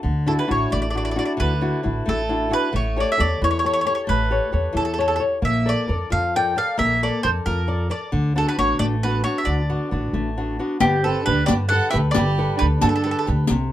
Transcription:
0.03 D2 D3
0.26 D4 E4 F#4 A4
0.39 B4
0.47 A1 D4 E4 F#4 C#5
0.70 A1 A3 D5
0.82 D5
0.90 D4 E4 D5
0.95 F#4 D5
1.05 D5
1.11 D5
1.16 D4 E4 F#4 D5
1.25 D5
1.37 D2 D3 B4
1.61 D4 E4 F#4
1.83 A1 D4 E4 F#4
2.06 A1 A3 A4
2.29 D4 E4 F#4
2.50 D4 E4 F#4 B4
2.73 A1 A3 C#5
2.96 G4 A4 C#5 D5
3.12 E5
3.18 E2 G4 A4 C#5 D5
3.42 E2 E3 C#5
3.51 C#5
3.59 C#5
3.64 G4 A4 C#5
3.73 C#5
3.81 C#5
3.85 G4 A4 C#5
3.95 C#5
4.07 A1 A3 B4
4.31 G4 A4 C#5
4.52 E2 G4 A4 C#5
4.73 E2 E3
4.77 A4
4.85 A4
4.94 G4 A4
4.98 A4 C#5
5.08 A4
5.16 G4 A4
5.20 C#5
5.42 A#1 A#3 E5
5.66 A4 A#4 D5
5.88 F2 A4 A#4 D5
6.10 F2 F3 F5
6.36 A4 A#4 D5 G5
6.56 A4 A#4 D5 F5
6.78 A#1 A#3 E5
7.03 A4 A#4 D5
7.23 F2 A4 A#4 C5 D5
7.46 F2 F3 A#4
7.67 A4 A#4 D5
7.90 A4 A#4 D5
8.12 D2 D3
8.36 B3 D4 F#4 A4
8.48 B4
8.58 A1 B3 D4 F#4 C#5
8.79 A1 A3 D5
9.03 B3 D4 F#4 B4
9.24 B3 D4 F#4 C#5
9.38 E5
9.45 D2 D3 D5
9.70 B3 D4 F#4
9.91 A1 B3 D4 F#4
10.13 A1 A3
10.37 B3 D4 F#4
10.59 B3 D4 F#4
10.80 G1 G3 B3 G4, riq
11.04 C4 G4 A4 B4
11.25 D2 D4 G4 A4 B4
11.46 G2 D3 G4 D5, riq
11.69 G4 A4 B4 F#5
11.90 G4 A4 B4 E5, riq
11.94 D2
12.11 G4 D5, riq
12.15 G1 G3
12.38 G4 A4 B4
12.57 D4 G4 A4 B4
12.62 D2
12.79 D3 D4 A4, riq
12.83 G2
12.89 A4
12.96 A4
13.04 G4 A4 B4
13.11 A4
13.19 A4
13.26 D2 G4 A4 B4, riq
13.47 C2 C3, riq

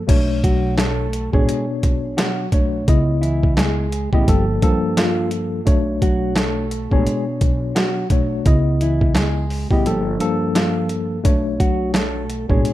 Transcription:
0.07 B1 B2 A3 D4 C#5, kick, closed hi-hat, crash
0.44 F#3 F#4, kick, closed hi-hat
0.78 A3 A4, snare, closed hi-hat
1.13 closed hi-hat
1.33 A1 B2 G#3 B3 D4 G#4 C#5, kick
1.49 closed hi-hat
1.83 B1, kick, closed hi-hat
2.17 F#3 F#4, snare, closed hi-hat
2.52 B1 B2 A3 D4 C#5, kick, closed hi-hat
2.87 C#2 C#3 B3 E4 D#5, kick, closed hi-hat
3.21 E3 E4, closed hi-hat
3.43 kick
3.57 G#3 G#4, snare, closed hi-hat
3.92 closed hi-hat
4.13 A1 C#3 G3 B3 E4 G4 D#5, kick
4.27 G1 G2 F3 A#3 A4, kick, closed hi-hat
4.62 G2 F3 A#3 A4, kick, closed hi-hat
4.97 F3 F4, snare, closed hi-hat
5.31 closed hi-hat
5.65 B1 B2 A3 D4 C#5, kick, closed hi-hat
6.02 F#3 F#4, kick, closed hi-hat
6.36 A3 A4, snare, closed hi-hat
6.71 closed hi-hat
6.91 A1 B2 G#3 B3 D4 G#4 C#5, kick
7.07 closed hi-hat
7.41 B1, kick, closed hi-hat
7.75 F#3 F#4, snare, closed hi-hat
8.10 B1 B2 A3 D4 C#5, kick, closed hi-hat
8.45 C#2 C#3 B3 E4 D#5, kick, closed hi-hat
8.81 E3 E4, closed hi-hat
9.01 kick
9.15 G#3 G#4, snare, closed hi-hat
9.50 open hi-hat
9.71 A1 C#3 G3 B3 E4 G4 D#5, kick
9.85 G1 G2 F3 A#3 A4, closed hi-hat
10.19 G2 F3 A#3 A4, closed hi-hat
10.55 F3 F4, snare, closed hi-hat
10.89 closed hi-hat
11.23 B1 B2 A3 D4 C#5, kick, closed hi-hat
11.60 F#3 F#4, kick, closed hi-hat
11.94 A3 A4, snare, closed hi-hat
12.30 closed hi-hat
12.49 A1 B2 G#3 B3 D4 G#4 C#5, kick
12.65 closed hi-hat

